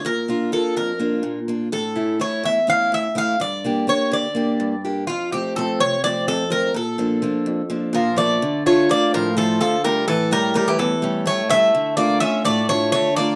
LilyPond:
<<
  \new Staff \with { instrumentName = "Bouzouki" } { \time 7/8 \tempo 4 = 126 bes'4 a'8 bes'4. r8 | a'4 cis''8 e''8 f''8 e''8 f''8 | d''4 cis''8 d''4. r8 | f'8 g'8 a'8 cis''8 d''8 a'8 bes'8 |
a'2~ a'8 bes'8 d''8~ | d''8 cis''8 d''8 bes'8 a'8 a'8 bes'8 | a'8 bes'8 bes'16 g'16 a'4 cis''8 e''8~ | e''8 d''8 e''8 d''8 cis''8 cis''8 d''8 | }
  \new Staff \with { instrumentName = "Steel-string acoustic guitar" } { \time 7/8 bes,8 <bes d' f'>8 <bes d' f'>8 f,8 <bes d' f'>8 bes,8 <bes d' f'>8 | a,8 <a cis' e'>8 <a cis' e'>8 e,8 <a cis' e'>8 a,8 <a cis' e'>8 | g,8 <bes d' g'>8 <bes d' g'>8 d8 <bes d' g'>8 g,8 <bes d' g'>8 | f,8 <f a c'>8 <f a c'>8 c8 <f a c'>8 f,8 <f a c'>8 |
bes,8 <f bes d'>8 <f bes d'>8 f,8 <f bes d'>8 bes,8 <f bes d'>8 | d8 <a d' f'>8 <a d' f'>8 a,8 <a d' f'>8 d8 <a d' f'>8 | a,8 <g a cis'>8 <g a cis'>8 e,8 <g a cis'>8 a,8 <g a cis'>8 | d8 <a d' f'>8 <a d' f'>8 a,8 <a d' f'>8 d8 <a d' f'>8 | }
  \new Staff \with { instrumentName = "Bouzouki" } { \time 7/8 r2. r8 | r2. r8 | r2. r8 | r2. r8 |
r2 r8 f8 a8~ | a8 a8 bes8 f8 f8 f8 g8 | e8 g8 g16 e16 e4 a8 a8~ | a8 bes8 cis'8 a8 a8 a8 bes8 | }
>>